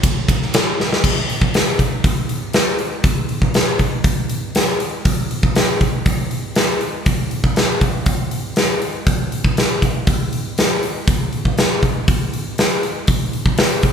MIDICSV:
0, 0, Header, 1, 2, 480
1, 0, Start_track
1, 0, Tempo, 501672
1, 991, Time_signature, 4, 2, 24, 8
1, 13325, End_track
2, 0, Start_track
2, 0, Title_t, "Drums"
2, 33, Note_on_c, 9, 36, 113
2, 33, Note_on_c, 9, 51, 95
2, 129, Note_off_c, 9, 36, 0
2, 129, Note_off_c, 9, 51, 0
2, 273, Note_on_c, 9, 36, 89
2, 278, Note_on_c, 9, 51, 72
2, 368, Note_off_c, 9, 36, 0
2, 374, Note_off_c, 9, 51, 0
2, 404, Note_on_c, 9, 38, 33
2, 499, Note_off_c, 9, 38, 0
2, 515, Note_on_c, 9, 51, 88
2, 523, Note_on_c, 9, 38, 110
2, 610, Note_off_c, 9, 51, 0
2, 619, Note_off_c, 9, 38, 0
2, 766, Note_on_c, 9, 38, 66
2, 861, Note_off_c, 9, 38, 0
2, 885, Note_on_c, 9, 38, 87
2, 981, Note_off_c, 9, 38, 0
2, 994, Note_on_c, 9, 36, 105
2, 997, Note_on_c, 9, 49, 89
2, 1090, Note_off_c, 9, 36, 0
2, 1093, Note_off_c, 9, 49, 0
2, 1240, Note_on_c, 9, 46, 48
2, 1336, Note_off_c, 9, 46, 0
2, 1354, Note_on_c, 9, 36, 83
2, 1449, Note_off_c, 9, 36, 0
2, 1476, Note_on_c, 9, 46, 61
2, 1484, Note_on_c, 9, 38, 95
2, 1571, Note_off_c, 9, 46, 0
2, 1580, Note_off_c, 9, 38, 0
2, 1714, Note_on_c, 9, 36, 76
2, 1719, Note_on_c, 9, 46, 44
2, 1809, Note_off_c, 9, 36, 0
2, 1814, Note_off_c, 9, 46, 0
2, 1954, Note_on_c, 9, 36, 101
2, 1954, Note_on_c, 9, 46, 56
2, 2049, Note_off_c, 9, 36, 0
2, 2050, Note_off_c, 9, 46, 0
2, 2193, Note_on_c, 9, 46, 47
2, 2289, Note_off_c, 9, 46, 0
2, 2425, Note_on_c, 9, 46, 66
2, 2434, Note_on_c, 9, 38, 105
2, 2521, Note_off_c, 9, 46, 0
2, 2529, Note_off_c, 9, 38, 0
2, 2666, Note_on_c, 9, 46, 42
2, 2762, Note_off_c, 9, 46, 0
2, 2906, Note_on_c, 9, 46, 58
2, 2908, Note_on_c, 9, 36, 104
2, 3002, Note_off_c, 9, 46, 0
2, 3004, Note_off_c, 9, 36, 0
2, 3147, Note_on_c, 9, 46, 44
2, 3243, Note_off_c, 9, 46, 0
2, 3270, Note_on_c, 9, 36, 80
2, 3365, Note_off_c, 9, 36, 0
2, 3389, Note_on_c, 9, 46, 58
2, 3398, Note_on_c, 9, 38, 98
2, 3485, Note_off_c, 9, 46, 0
2, 3493, Note_off_c, 9, 38, 0
2, 3628, Note_on_c, 9, 46, 46
2, 3630, Note_on_c, 9, 36, 76
2, 3723, Note_off_c, 9, 46, 0
2, 3726, Note_off_c, 9, 36, 0
2, 3867, Note_on_c, 9, 46, 60
2, 3869, Note_on_c, 9, 36, 103
2, 3962, Note_off_c, 9, 46, 0
2, 3965, Note_off_c, 9, 36, 0
2, 4109, Note_on_c, 9, 46, 55
2, 4205, Note_off_c, 9, 46, 0
2, 4352, Note_on_c, 9, 46, 66
2, 4361, Note_on_c, 9, 38, 94
2, 4448, Note_off_c, 9, 46, 0
2, 4456, Note_off_c, 9, 38, 0
2, 4594, Note_on_c, 9, 46, 48
2, 4689, Note_off_c, 9, 46, 0
2, 4834, Note_on_c, 9, 46, 71
2, 4836, Note_on_c, 9, 36, 103
2, 4929, Note_off_c, 9, 46, 0
2, 4931, Note_off_c, 9, 36, 0
2, 5079, Note_on_c, 9, 46, 47
2, 5175, Note_off_c, 9, 46, 0
2, 5197, Note_on_c, 9, 36, 88
2, 5292, Note_off_c, 9, 36, 0
2, 5315, Note_on_c, 9, 46, 62
2, 5324, Note_on_c, 9, 38, 104
2, 5411, Note_off_c, 9, 46, 0
2, 5419, Note_off_c, 9, 38, 0
2, 5558, Note_on_c, 9, 36, 81
2, 5558, Note_on_c, 9, 46, 45
2, 5653, Note_off_c, 9, 46, 0
2, 5654, Note_off_c, 9, 36, 0
2, 5795, Note_on_c, 9, 46, 59
2, 5798, Note_on_c, 9, 36, 99
2, 5891, Note_off_c, 9, 46, 0
2, 5894, Note_off_c, 9, 36, 0
2, 6037, Note_on_c, 9, 46, 48
2, 6132, Note_off_c, 9, 46, 0
2, 6272, Note_on_c, 9, 46, 63
2, 6280, Note_on_c, 9, 38, 100
2, 6367, Note_off_c, 9, 46, 0
2, 6376, Note_off_c, 9, 38, 0
2, 6514, Note_on_c, 9, 46, 41
2, 6609, Note_off_c, 9, 46, 0
2, 6754, Note_on_c, 9, 46, 62
2, 6758, Note_on_c, 9, 36, 105
2, 6850, Note_off_c, 9, 46, 0
2, 6853, Note_off_c, 9, 36, 0
2, 6995, Note_on_c, 9, 46, 46
2, 7091, Note_off_c, 9, 46, 0
2, 7117, Note_on_c, 9, 36, 78
2, 7212, Note_off_c, 9, 36, 0
2, 7236, Note_on_c, 9, 46, 59
2, 7244, Note_on_c, 9, 38, 99
2, 7331, Note_off_c, 9, 46, 0
2, 7340, Note_off_c, 9, 38, 0
2, 7474, Note_on_c, 9, 46, 47
2, 7476, Note_on_c, 9, 36, 79
2, 7570, Note_off_c, 9, 46, 0
2, 7572, Note_off_c, 9, 36, 0
2, 7711, Note_on_c, 9, 46, 66
2, 7715, Note_on_c, 9, 36, 106
2, 7807, Note_off_c, 9, 46, 0
2, 7811, Note_off_c, 9, 36, 0
2, 7953, Note_on_c, 9, 46, 54
2, 8049, Note_off_c, 9, 46, 0
2, 8190, Note_on_c, 9, 46, 68
2, 8199, Note_on_c, 9, 38, 99
2, 8286, Note_off_c, 9, 46, 0
2, 8295, Note_off_c, 9, 38, 0
2, 8436, Note_on_c, 9, 46, 45
2, 8532, Note_off_c, 9, 46, 0
2, 8675, Note_on_c, 9, 36, 105
2, 8675, Note_on_c, 9, 46, 61
2, 8770, Note_off_c, 9, 46, 0
2, 8771, Note_off_c, 9, 36, 0
2, 8919, Note_on_c, 9, 46, 47
2, 9014, Note_off_c, 9, 46, 0
2, 9037, Note_on_c, 9, 36, 83
2, 9132, Note_off_c, 9, 36, 0
2, 9160, Note_on_c, 9, 46, 65
2, 9168, Note_on_c, 9, 38, 89
2, 9255, Note_off_c, 9, 46, 0
2, 9264, Note_off_c, 9, 38, 0
2, 9398, Note_on_c, 9, 36, 79
2, 9401, Note_on_c, 9, 46, 47
2, 9494, Note_off_c, 9, 36, 0
2, 9497, Note_off_c, 9, 46, 0
2, 9635, Note_on_c, 9, 46, 65
2, 9637, Note_on_c, 9, 36, 103
2, 9731, Note_off_c, 9, 46, 0
2, 9733, Note_off_c, 9, 36, 0
2, 9881, Note_on_c, 9, 46, 47
2, 9976, Note_off_c, 9, 46, 0
2, 10121, Note_on_c, 9, 46, 62
2, 10129, Note_on_c, 9, 38, 102
2, 10217, Note_off_c, 9, 46, 0
2, 10225, Note_off_c, 9, 38, 0
2, 10360, Note_on_c, 9, 46, 43
2, 10456, Note_off_c, 9, 46, 0
2, 10597, Note_on_c, 9, 36, 108
2, 10599, Note_on_c, 9, 46, 63
2, 10693, Note_off_c, 9, 36, 0
2, 10694, Note_off_c, 9, 46, 0
2, 10837, Note_on_c, 9, 46, 38
2, 10933, Note_off_c, 9, 46, 0
2, 10958, Note_on_c, 9, 36, 74
2, 11053, Note_off_c, 9, 36, 0
2, 11077, Note_on_c, 9, 46, 58
2, 11085, Note_on_c, 9, 38, 103
2, 11172, Note_off_c, 9, 46, 0
2, 11181, Note_off_c, 9, 38, 0
2, 11315, Note_on_c, 9, 46, 41
2, 11316, Note_on_c, 9, 36, 76
2, 11411, Note_off_c, 9, 46, 0
2, 11412, Note_off_c, 9, 36, 0
2, 11557, Note_on_c, 9, 46, 63
2, 11558, Note_on_c, 9, 36, 105
2, 11653, Note_off_c, 9, 46, 0
2, 11654, Note_off_c, 9, 36, 0
2, 11802, Note_on_c, 9, 46, 47
2, 11898, Note_off_c, 9, 46, 0
2, 12038, Note_on_c, 9, 46, 60
2, 12046, Note_on_c, 9, 38, 104
2, 12133, Note_off_c, 9, 46, 0
2, 12142, Note_off_c, 9, 38, 0
2, 12278, Note_on_c, 9, 46, 46
2, 12374, Note_off_c, 9, 46, 0
2, 12509, Note_on_c, 9, 46, 66
2, 12516, Note_on_c, 9, 36, 94
2, 12605, Note_off_c, 9, 46, 0
2, 12611, Note_off_c, 9, 36, 0
2, 12757, Note_on_c, 9, 46, 44
2, 12853, Note_off_c, 9, 46, 0
2, 12875, Note_on_c, 9, 36, 81
2, 12971, Note_off_c, 9, 36, 0
2, 12990, Note_on_c, 9, 46, 73
2, 12999, Note_on_c, 9, 38, 113
2, 13086, Note_off_c, 9, 46, 0
2, 13095, Note_off_c, 9, 38, 0
2, 13230, Note_on_c, 9, 46, 53
2, 13236, Note_on_c, 9, 36, 77
2, 13325, Note_off_c, 9, 36, 0
2, 13325, Note_off_c, 9, 46, 0
2, 13325, End_track
0, 0, End_of_file